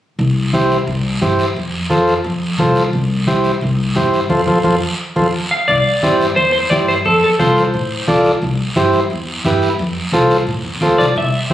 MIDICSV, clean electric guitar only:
0, 0, Header, 1, 2, 480
1, 0, Start_track
1, 0, Key_signature, 0, "major"
1, 0, Tempo, 342857
1, 265, Time_signature, 4, 2, 24, 8
1, 16149, End_track
2, 0, Start_track
2, 0, Title_t, "Clean electric guitar"
2, 0, Program_c, 0, 27
2, 7716, Note_on_c, 0, 77, 88
2, 7944, Note_off_c, 0, 77, 0
2, 7949, Note_on_c, 0, 74, 95
2, 8621, Note_off_c, 0, 74, 0
2, 8906, Note_on_c, 0, 72, 90
2, 9117, Note_off_c, 0, 72, 0
2, 9133, Note_on_c, 0, 72, 88
2, 9203, Note_off_c, 0, 72, 0
2, 9380, Note_on_c, 0, 74, 83
2, 9450, Note_off_c, 0, 74, 0
2, 9637, Note_on_c, 0, 72, 79
2, 9707, Note_off_c, 0, 72, 0
2, 9880, Note_on_c, 0, 69, 84
2, 10116, Note_off_c, 0, 69, 0
2, 10132, Note_on_c, 0, 69, 74
2, 10202, Note_off_c, 0, 69, 0
2, 10352, Note_on_c, 0, 72, 70
2, 11256, Note_off_c, 0, 72, 0
2, 15377, Note_on_c, 0, 74, 74
2, 15604, Note_off_c, 0, 74, 0
2, 15648, Note_on_c, 0, 76, 89
2, 16149, Note_off_c, 0, 76, 0
2, 16149, End_track
0, 0, End_of_file